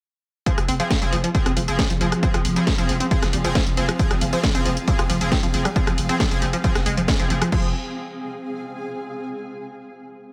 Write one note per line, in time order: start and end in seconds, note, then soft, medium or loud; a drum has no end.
0.46 0.61 F3 medium
0.46 0.53 F3 loud
0.46 7.57 F3 medium
0.46 7.51 C4 medium
0.46 0.61 C4 medium
0.46 0.61 G#4 medium
0.46 kick loud
0.46 closed hi-hat medium
0.58 0.68 F1 medium
0.58 7.52 G#4 medium
0.58 cross-stick medium
0.58 closed hi-hat medium
0.68 0.80 F1 loud
0.68 0.75 C4 loud
0.68 open hi-hat loud
0.80 0.83 F3 loud
0.80 0.88 F3 medium
0.80 0.88 C4 medium
0.80 0.88 G#4 loud
0.80 closed hi-hat medium
0.84 7.52 F5 medium
0.91 kick loud
0.91 snare loud
0.91 closed hi-hat medium
1.02 1.12 F1 medium
1.02 1.16 F3 medium
1.02 1.05 G3 medium
1.02 1.16 C4 medium
1.02 1.16 G#4 loud
1.02 closed hi-hat medium
1.13 1.24 F1 loud
1.13 1.16 F3 loud
1.13 open hi-hat medium
1.24 1.30 F3 loud
1.24 closed hi-hat medium
1.35 1.49 F3 medium
1.35 1.49 C4 medium
1.35 1.49 G#4 loud
1.35 kick loud
1.35 closed hi-hat medium
1.46 1.56 F1 medium
1.46 1.52 C4 loud
1.46 cross-stick medium
1.46 closed hi-hat medium
1.53 7.52 G#5 medium
1.57 1.67 F1 loud
1.57 1.60 F3 loud
1.57 open hi-hat loud
1.68 1.79 F1 medium
1.68 1.82 F3 loud
1.68 1.82 C4 medium
1.68 1.82 G#4 loud
1.68 closed hi-hat medium
1.79 1.82 G3 medium
1.79 kick loud
1.79 snare loud
1.79 closed hi-hat medium
1.90 2.00 F1 medium
1.90 1.94 F3 loud
1.90 closed hi-hat medium
2.01 2.12 F1 loud
2.01 2.07 F3 loud
2.01 2.10 F3 medium
2.01 2.10 C4 medium
2.01 2.10 G#4 medium
2.01 open hi-hat medium
2.12 cross-stick medium
2.12 closed hi-hat medium
2.23 2.37 F3 medium
2.23 2.29 C4 loud
2.23 2.37 C4 medium
2.23 2.37 G#4 medium
2.23 kick loud
2.23 closed hi-hat medium
2.34 2.44 F1 medium
2.34 2.38 F3 loud
2.34 cross-stick medium
2.34 closed hi-hat medium
2.45 2.56 F1 loud
2.45 open hi-hat loud
2.56 2.65 F3 loud
2.56 2.60 G3 medium
2.56 2.65 C4 medium
2.56 2.65 G#4 loud
2.56 closed hi-hat medium
2.67 2.71 F3 loud
2.67 kick loud
2.67 snare loud
2.67 closed hi-hat medium
2.78 2.88 F1 medium
2.78 2.84 F3 loud
2.78 2.92 F3 medium
2.78 2.92 C4 medium
2.78 2.92 G#4 loud
2.78 closed hi-hat medium
2.89 3.00 F1 loud
2.89 open hi-hat loud
3.00 3.06 C4 loud
3.00 closed hi-hat medium
3.11 3.25 F3 loud
3.11 3.15 F3 loud
3.11 3.25 C4 medium
3.11 3.25 G#4 loud
3.11 kick loud
3.11 closed hi-hat medium
3.22 3.33 F1 medium
3.22 cross-stick medium
3.22 snare soft
3.22 closed hi-hat medium
3.33 3.44 F1 loud
3.33 3.37 G3 medium
3.33 open hi-hat loud
3.44 3.55 F1 medium
3.44 3.58 F3 loud
3.44 3.48 F3 loud
3.44 3.58 C4 medium
3.44 3.58 G#4 loud
3.44 closed hi-hat medium
3.55 3.61 F3 loud
3.55 kick loud
3.55 snare loud
3.55 closed hi-hat medium
3.67 3.77 F1 medium
3.67 closed hi-hat medium
3.77 3.88 F1 loud
3.77 3.86 F3 medium
3.77 3.86 C4 medium
3.77 3.83 C4 loud
3.77 3.86 G#4 medium
3.77 open hi-hat loud
3.89 3.92 F3 loud
3.89 cross-stick medium
3.89 closed hi-hat medium
3.99 4.14 F3 medium
3.99 4.14 C4 medium
3.99 4.14 G#4 loud
3.99 kick loud
3.99 closed hi-hat medium
4.11 4.21 F1 medium
4.11 4.14 G3 medium
4.11 cross-stick medium
4.11 closed hi-hat medium
4.21 4.32 F1 loud
4.21 4.25 F3 loud
4.21 open hi-hat loud
4.33 4.41 F3 loud
4.33 4.39 F3 loud
4.33 4.41 C4 medium
4.33 4.41 G#4 loud
4.33 closed hi-hat medium
4.43 kick loud
4.43 snare loud
4.43 closed hi-hat medium
4.55 4.65 F1 medium
4.55 4.69 F3 loud
4.55 4.69 C4 medium
4.55 4.61 C4 loud
4.55 4.69 G#4 loud
4.55 closed hi-hat medium
4.65 4.77 F1 loud
4.65 4.69 F3 loud
4.65 open hi-hat loud
4.77 closed hi-hat medium
4.87 5.02 F3 loud
4.87 4.91 G3 medium
4.87 5.02 C4 medium
4.87 5.02 G#4 loud
4.87 kick loud
4.87 closed hi-hat medium
4.99 5.09 F1 medium
4.99 5.02 F3 loud
4.99 cross-stick medium
4.99 closed hi-hat medium
5.10 5.20 F1 loud
5.10 5.16 F3 loud
5.10 open hi-hat loud
5.21 5.31 F1 medium
5.21 5.35 F3 loud
5.21 5.35 C4 medium
5.21 5.35 G#4 loud
5.21 closed hi-hat medium
5.32 5.38 C4 loud
5.32 kick loud
5.32 snare loud
5.32 closed hi-hat medium
5.43 5.53 F1 medium
5.43 5.47 F3 loud
5.43 closed hi-hat medium
5.54 5.65 F1 loud
5.54 5.63 F3 medium
5.54 5.63 C4 medium
5.54 5.63 G#4 medium
5.54 open hi-hat loud
5.65 5.69 G3 medium
5.65 cross-stick medium
5.65 closed hi-hat medium
5.76 5.79 F3 loud
5.76 5.90 F3 medium
5.76 5.90 C4 medium
5.76 5.90 G#4 loud
5.76 kick loud
5.76 closed hi-hat medium
5.87 5.97 F1 medium
5.87 5.93 F3 loud
5.87 cross-stick medium
5.87 closed hi-hat medium
5.98 6.09 F1 loud
5.98 open hi-hat loud
6.09 6.18 F3 medium
6.09 6.18 C4 medium
6.09 6.15 C4 loud
6.09 6.18 G#4 loud
6.09 closed hi-hat medium
6.20 6.24 F3 loud
6.20 kick loud
6.20 snare loud
6.20 closed hi-hat medium
6.31 6.41 F1 medium
6.31 6.45 F3 loud
6.31 6.45 C4 medium
6.31 6.45 G#4 loud
6.31 closed hi-hat medium
6.42 6.53 F1 loud
6.42 6.46 G3 medium
6.42 open hi-hat loud
6.53 6.57 F3 loud
6.53 closed hi-hat medium
6.64 6.78 F3 loud
6.64 6.70 F3 loud
6.64 6.78 C4 medium
6.64 6.78 G#4 loud
6.64 kick loud
6.64 closed hi-hat medium
6.75 6.86 F1 medium
6.75 cross-stick loud
6.75 snare soft
6.75 closed hi-hat medium
6.86 6.97 F1 loud
6.86 6.95 G#3 loud
6.86 open hi-hat loud
6.97 7.08 F1 medium
6.97 7.01 F3 medium
6.97 closed hi-hat medium
7.08 kick loud
7.08 snare loud
7.08 closed hi-hat medium
7.19 7.30 F1 medium
7.19 7.25 F3 medium
7.19 7.28 F3 medium
7.19 7.28 C4 medium
7.19 7.28 G#4 loud
7.19 closed hi-hat medium
7.30 7.41 F1 loud
7.30 7.34 F3 medium
7.30 7.39 F3 medium
7.30 7.39 C4 medium
7.30 7.39 G#4 medium
7.30 open hi-hat loud
7.42 7.50 F3 medium
7.42 cross-stick loud
7.42 closed hi-hat medium
7.52 7.73 F1 medium
7.52 7.73 F3 loud
7.52 7.69 F3 medium
7.52 9.25 C4 medium
7.52 7.69 C4 medium
7.52 7.69 G#4 medium
7.52 kick loud
7.52 crash medium
7.59 9.25 G#4 medium
7.66 9.25 F5 medium
7.72 9.25 G#5 medium